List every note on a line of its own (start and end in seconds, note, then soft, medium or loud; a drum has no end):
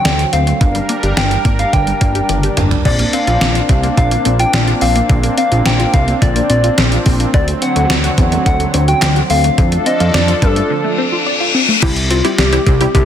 0.00 0.57 D3 medium
0.00 0.59 F#3 medium
0.00 0.57 C4 medium
0.00 0.34 G5 loud
0.05 0.25 D2 loud
0.05 0.15 D5 medium
0.05 snare loud
0.05 closed hi-hat medium
0.19 0.29 F#4 medium
0.19 closed hi-hat medium
0.33 0.53 D2 medium
0.33 0.43 C4 medium
0.33 0.89 F5 loud
0.33 closed hi-hat medium
0.47 0.57 A3 medium
0.47 closed hi-hat soft
0.61 0.81 G1 loud
0.61 0.71 D3 medium
0.61 2.83 G3 medium
0.61 7.30 D4 medium
0.61 2.83 A#4 medium
0.61 kick loud
0.61 closed hi-hat medium
0.75 0.85 G3 medium
0.75 closed hi-hat medium
0.89 0.99 A#3 medium
0.89 closed hi-hat medium
1.03 1.13 G1 medium
1.03 1.13 G4 medium
1.03 closed hi-hat soft
1.17 1.37 G1 loud
1.17 1.27 D5 medium
1.17 1.56 G5 loud
1.17 snare loud
1.17 closed hi-hat medium
1.31 1.41 G4 medium
1.31 closed hi-hat medium
1.45 1.65 G#1 medium
1.45 1.55 A#3 medium
1.45 kick medium
1.45 closed hi-hat medium
1.59 1.69 G3 medium
1.59 1.75 F5 medium
1.59 closed hi-hat medium
1.73 1.93 G1 loud
1.73 1.83 D3 medium
1.73 2.58 G5 medium
1.73 kick medium
1.73 closed hi-hat medium
1.87 1.98 G3 medium
1.87 closed hi-hat medium
2.01 2.21 G1 loud
2.01 2.12 A#3 medium
2.01 kick medium
2.01 closed hi-hat medium
2.15 2.26 G4 medium
2.15 closed hi-hat medium
2.29 2.49 G1 loud
2.29 2.40 D5 medium
2.29 closed hi-hat medium
2.29 high tom medium
2.43 2.54 G4 medium
2.43 closed hi-hat medium
2.57 2.77 G1 loud
2.57 2.68 A#3 medium
2.57 closed hi-hat medium
2.57 mid tom medium
2.71 2.82 G3 medium
2.71 closed hi-hat soft
2.71 floor tom loud
2.85 3.05 A#1 loud
2.85 2.96 D3 medium
2.85 7.30 A#3 medium
2.85 9.54 C4 medium
2.85 3.15 D5 medium
2.85 kick loud
2.85 crash medium
2.99 3.10 A#3 medium
2.99 closed hi-hat medium
3.13 3.24 C4 medium
3.13 3.97 F5 loud
3.13 closed hi-hat medium
3.27 3.37 A#1 loud
3.27 3.38 F4 medium
3.27 closed hi-hat soft
3.41 3.61 A#1 loud
3.41 3.52 D5 medium
3.41 snare loud
3.41 closed hi-hat medium
3.55 3.66 F4 medium
3.55 closed hi-hat medium
3.69 3.89 C2 medium
3.69 3.80 C4 medium
3.69 kick medium
3.69 closed hi-hat medium
3.83 3.94 A#3 medium
3.83 closed hi-hat medium
3.97 4.17 A#1 loud
3.97 4.08 D3 medium
3.97 4.37 F5 loud
3.97 kick medium
3.97 closed hi-hat medium
4.11 4.22 A#3 medium
4.11 closed hi-hat medium
4.25 4.45 A#1 loud
4.25 4.36 C4 medium
4.25 closed hi-hat medium
4.39 4.50 F4 medium
4.39 4.79 G5 loud
4.39 closed hi-hat medium
4.53 4.73 A#1 loud
4.53 4.64 D5 medium
4.53 snare loud
4.53 closed hi-hat medium
4.68 4.78 F4 medium
4.68 closed hi-hat medium
4.81 5.01 A#1 loud
4.81 4.92 C4 medium
4.81 5.34 F5 loud
4.81 open hi-hat medium
4.96 5.06 A#3 medium
4.96 closed hi-hat soft
5.09 5.29 A#1 loud
5.09 5.20 D3 medium
5.09 kick loud
5.09 closed hi-hat medium
5.23 5.34 A#3 medium
5.23 closed hi-hat medium
5.38 5.48 C4 medium
5.38 5.67 F5 loud
5.38 closed hi-hat medium
5.52 5.62 A#1 loud
5.52 5.62 F4 medium
5.52 closed hi-hat medium
5.66 5.85 A#1 loud
5.66 5.76 D5 medium
5.66 5.95 G5 loud
5.66 snare loud
5.66 closed hi-hat medium
5.80 5.90 F4 medium
5.80 closed hi-hat medium
5.94 6.13 C2 loud
5.94 6.04 C4 medium
5.94 6.24 F5 medium
5.94 kick loud
5.94 closed hi-hat medium
6.08 6.18 A#3 medium
6.08 closed hi-hat medium
6.22 6.41 A#1 loud
6.22 6.32 D3 medium
6.22 6.49 D5 medium
6.22 kick medium
6.22 closed hi-hat medium
6.36 6.46 A#3 medium
6.36 closed hi-hat medium
6.50 6.70 A#1 medium
6.50 6.60 C4 medium
6.50 7.02 D5 medium
6.50 closed hi-hat medium
6.64 6.74 F4 medium
6.64 closed hi-hat medium
6.78 6.98 A#1 loud
6.78 6.88 D5 medium
6.78 snare loud
6.78 closed hi-hat medium
6.92 7.02 F4 medium
6.92 closed hi-hat medium
7.06 7.26 A#1 loud
7.06 7.16 C4 medium
7.06 kick medium
7.06 open hi-hat medium
7.20 7.30 A#3 medium
7.20 closed hi-hat medium
7.34 7.54 D2 loud
7.34 7.44 D3 medium
7.34 9.56 D3 medium
7.34 9.56 F#3 medium
7.34 7.47 D5 loud
7.34 kick loud
7.34 closed hi-hat medium
7.48 7.58 A3 medium
7.48 closed hi-hat medium
7.62 7.72 C4 medium
7.62 8.42 F#5 loud
7.62 closed hi-hat medium
7.76 7.86 D2 medium
7.76 7.86 F#4 medium
7.76 closed hi-hat medium
7.90 8.10 D2 loud
7.90 8.00 D5 medium
7.90 snare loud
7.90 closed hi-hat medium
8.04 8.14 F#4 medium
8.04 closed hi-hat medium
8.18 8.38 E2 medium
8.18 8.28 C4 medium
8.18 kick loud
8.18 closed hi-hat medium
8.32 8.42 A3 medium
8.32 closed hi-hat soft
8.46 8.66 D2 loud
8.46 8.56 D3 medium
8.46 8.85 F#5 loud
8.46 kick medium
8.46 closed hi-hat medium
8.60 8.70 A3 medium
8.60 closed hi-hat medium
8.74 8.94 D2 loud
8.74 8.84 C4 medium
8.74 closed hi-hat medium
8.88 8.98 F#4 medium
8.88 9.27 G5 loud
8.88 closed hi-hat medium
9.02 9.22 D2 loud
9.02 9.12 D5 medium
9.02 snare loud
9.02 clap loud
9.02 closed hi-hat medium
9.16 9.26 F#4 medium
9.16 closed hi-hat medium
9.30 9.50 D2 loud
9.30 9.40 C4 medium
9.30 9.88 F5 loud
9.30 open hi-hat medium
9.44 9.54 A3 medium
9.44 closed hi-hat medium
9.58 9.78 F2 loud
9.58 9.68 D3 loud
9.58 11.80 F3 medium
9.58 11.80 D4 medium
9.58 11.80 A4 medium
9.58 kick loud
9.58 closed hi-hat medium
9.72 9.82 A3 medium
9.72 closed hi-hat medium
9.86 9.97 C4 medium
9.86 10.16 D#5 loud
9.86 closed hi-hat medium
10.00 10.10 F2 loud
10.00 10.11 F4 medium
10.00 closed hi-hat medium
10.14 10.34 F2 loud
10.14 10.25 D5 medium
10.14 10.44 D5 loud
10.14 snare loud
10.14 closed hi-hat medium
10.28 10.39 F4 medium
10.28 closed hi-hat medium
10.42 10.62 G2 medium
10.42 10.53 C4 medium
10.42 11.55 A4 medium
10.42 kick medium
10.42 closed hi-hat medium
10.56 10.67 A3 medium
10.56 closed hi-hat medium
10.70 10.81 D3 medium
10.70 reverse cymbal medium
10.84 10.95 A3 medium
10.98 11.09 C4 medium
11.12 11.23 F4 medium
11.26 11.37 D5 medium
11.40 11.51 F4 medium
11.54 11.65 C4 medium
11.69 11.79 A3 medium
11.82 12.22 C2 loud
11.82 11.93 D3 loud
11.82 12.10 G3 medium
11.82 12.10 C4 medium
11.82 12.10 E4 medium
11.82 11.95 E4 medium
11.82 12.10 G4 medium
11.82 kick loud
11.82 closed hi-hat medium
11.82 crash loud
11.96 closed hi-hat medium
12.11 12.21 C4 medium
12.11 12.40 F4 loud
12.11 closed hi-hat medium
12.25 12.43 G3 medium
12.25 12.43 C4 medium
12.25 12.43 E4 medium
12.25 12.35 E4 medium
12.25 12.43 G4 medium
12.25 closed hi-hat medium
12.38 12.58 C2 loud
12.38 12.94 G4 loud
12.38 12.49 D5 loud
12.38 snare loud
12.38 closed hi-hat medium
12.53 12.71 G3 medium
12.53 12.71 C4 medium
12.53 12.71 E4 medium
12.53 12.63 E4 medium
12.53 12.71 G4 medium
12.53 closed hi-hat medium
12.67 12.86 C2 loud
12.67 12.77 C4 medium
12.67 kick loud
12.67 closed hi-hat medium
12.81 12.91 G3 medium
12.81 13.05 G3 medium
12.81 13.05 C4 medium
12.81 13.05 E4 medium
12.81 13.05 G4 medium
12.81 closed hi-hat medium
12.95 13.05 C2 loud
12.95 13.05 D3 medium
12.95 13.05 G4 loud
12.95 kick medium
12.95 closed hi-hat medium